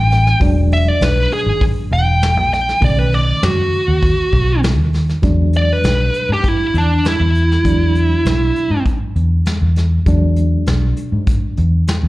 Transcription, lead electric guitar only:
0.00 0.39 G5 loud
0.73 0.88 E5 loud
0.88 1.04 D5 medium
1.04 1.32 B4 medium
1.33 1.61 G#4 loud
1.93 2.51 G5 loud
2.54 2.82 G5 loud
2.84 2.99 D5 loud
2.99 3.14 B4 medium
3.14 3.42 D5 medium
3.45 4.60 F#4 loud
5.57 5.73 D5 medium
5.73 6.29 B4 medium
6.33 6.48 G4 medium
6.48 6.75 E4 medium
6.78 7.05 D4 medium
7.08 8.83 E4 medium

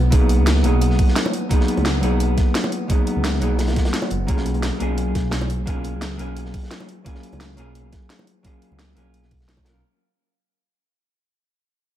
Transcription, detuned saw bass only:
0.00 0.40 B1 medium
0.39 0.63 C#2 medium
0.64 0.98 B1 medium
1.77 2.02 C#2 medium
2.03 2.36 B1 medium
3.16 3.40 C#2 medium
3.42 3.75 B1 medium
4.11 4.27 F#1 loud
4.29 4.71 B1 medium
4.81 5.14 B1 medium
5.15 5.95 B1 medium
5.94 6.18 C#2 medium
6.19 6.53 B1 medium
7.33 7.57 C#2 medium
7.58 7.91 B1 medium
8.71 8.95 C#2 medium
8.97 9.14 B1 medium
9.14 9.74 B1 medium
9.75 9.82 B1 medium

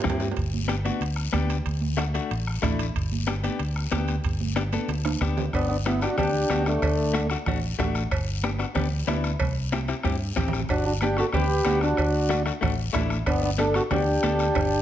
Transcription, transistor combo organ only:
5.54 5.69 B3 medium
5.54 5.69 D4 medium
5.70 5.78 B3 medium
5.70 5.77 D4 medium
5.87 6.02 B3 medium
5.87 6.03 E4 loud
6.02 6.16 D4 medium
6.02 6.17 F#4 medium
6.17 6.63 D4 medium
6.17 6.67 G4 loud
6.67 7.27 A3 medium
6.67 7.27 D4 medium
10.70 10.85 D4 medium
10.70 10.85 F#4 medium
10.86 10.94 D4 medium
10.86 10.93 F#4 medium
11.03 11.17 D4 medium
11.03 11.17 G4 medium
11.19 11.27 F#4 medium
11.19 11.26 A4 medium
11.35 11.80 G4 medium
11.35 11.79 B4 loud
11.82 12.43 D4 medium
11.82 12.43 F#4 medium
13.27 13.42 B3 medium
13.27 13.42 D4 medium
13.43 13.50 B3 medium
13.43 13.50 D4 medium
13.59 13.74 D4 medium
13.59 13.74 A4 loud
13.76 13.83 F#4 medium
13.76 13.83 A4 loud
13.92 14.82 D4 medium
13.92 14.82 G4 medium

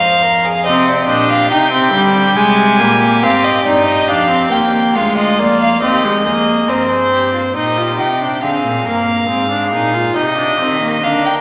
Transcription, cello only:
0.00 0.67 F2 medium
0.66 1.08 C3 medium
1.09 1.53 A#2 medium
1.51 1.96 C3 medium
1.94 2.37 D3 medium
2.38 2.82 C3 medium
2.81 3.25 A#2 medium
3.24 3.66 G#2 medium
3.66 4.08 G2 medium
4.09 4.52 F2 medium
4.52 4.97 D#2 medium
4.95 5.40 D2 medium
5.39 5.82 F2 medium
5.82 6.25 D#2 medium
6.25 6.68 F2 medium
6.69 7.54 G2 medium
7.56 8.01 A#2 medium
7.99 8.42 C3 medium
8.43 8.51 D3 medium
8.64 8.86 A#2 medium
8.86 9.29 G2 medium
9.29 9.74 G#2 medium
9.73 10.15 A#2 medium
10.16 10.59 C3 medium
10.59 11.04 D#3 medium
11.03 11.41 D3 medium

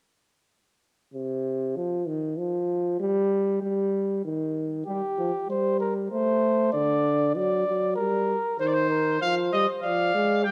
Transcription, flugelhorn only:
4.86 5.45 G4 medium
5.50 5.80 C5 medium
5.80 5.94 A#4 medium
6.10 6.72 C5 medium
6.72 7.34 D5 medium
7.35 7.95 D5 medium
7.96 8.57 A#4 medium
8.60 8.89 C5 medium
8.90 9.19 A#4 medium
9.20 9.81 C5 medium
9.84 10.45 D5 medium
10.44 10.51 G4 medium

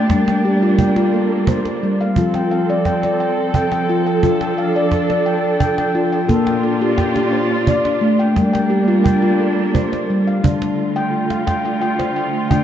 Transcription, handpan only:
0.00 0.10 A3 medium
0.00 0.10 D5 medium
0.00 0.27 G5 medium
0.10 1.44 G3 medium
0.28 0.78 G5 medium
0.45 0.97 G4 medium
0.62 0.95 F4 medium
0.79 1.31 G5 medium
0.96 1.31 F4 medium
1.14 1.66 A4 medium
1.48 1.65 C5 medium
1.66 2.17 C5 medium
1.83 2.17 G3 medium
2.01 2.35 F5 medium
2.17 3.51 F3 medium
2.17 2.51 F4 medium
2.35 2.85 G5 medium
2.51 3.03 F5 medium
2.70 3.03 D5 medium
2.86 3.19 G5 medium
3.04 3.38 D5 medium
3.20 3.54 G5 medium
3.55 3.71 G5 medium
3.72 4.05 G5 medium
3.89 4.22 F4 medium
4.06 4.40 G5 medium
4.23 5.57 F3 medium
4.23 4.58 F4 medium
4.41 4.92 G5 medium
4.58 5.10 F5 medium
4.76 5.09 D5 medium
5.10 5.44 D5 medium
5.26 5.59 G5 medium
5.60 5.77 G5 medium
5.78 6.11 G5 medium
5.95 6.30 F4 medium
6.12 6.45 G5 medium
6.28 7.63 A#3 medium
6.28 6.62 A4 medium
6.46 6.96 G5 medium
6.63 7.16 A4 medium
6.81 7.15 G4 medium
6.98 7.51 G5 medium
7.16 7.51 G4 medium
7.33 7.85 C5 medium
7.68 7.84 D5 medium
7.85 8.37 D5 medium
8.01 8.36 A3 medium
8.19 8.52 G5 medium
8.36 8.71 G3 medium
8.53 9.03 G5 medium
8.70 9.23 G4 medium
8.88 9.21 F4 medium
9.04 9.57 G5 medium
9.22 9.57 F4 medium
9.40 9.92 A4 medium
9.74 9.91 C5 medium
9.92 10.44 C5 medium
10.10 10.44 G3 medium
10.27 10.62 F5 medium
10.44 11.78 D3 medium
10.44 10.78 D4 medium
10.96 11.31 G5 medium
11.31 11.82 F5 medium
11.47 11.64 G5 medium
11.65 11.80 G5 medium
11.81 12.15 G5 medium
11.99 12.34 C5 medium
12.16 12.49 G5 medium
12.51 12.64 D3 medium
12.51 12.64 D4 medium
12.51 12.64 G5 medium

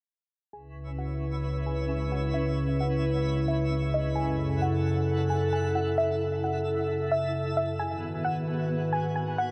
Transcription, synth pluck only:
0.53 0.96 G#5 medium
0.98 1.62 F#5 medium
1.66 1.88 G#5 medium
1.89 2.11 G#5 medium
2.12 2.33 F#5 medium
2.34 2.77 E5 loud
2.80 3.44 F#5 medium
3.48 3.91 E5 medium
3.94 4.15 D#5 medium
4.15 4.59 G#5 loud
4.62 5.26 F#5 medium
5.30 5.51 G#5 medium
5.53 5.74 G#5 medium
5.75 5.97 F#5 medium
5.98 6.41 E5 loud
6.44 7.08 F#5 medium
7.12 7.54 E5 medium
7.57 7.79 E5 medium
7.79 8.22 G#5 loud
8.24 8.89 F#5 medium
8.93 9.14 G#5 medium
9.16 9.38 G#5 medium
9.38 9.51 F#5 medium

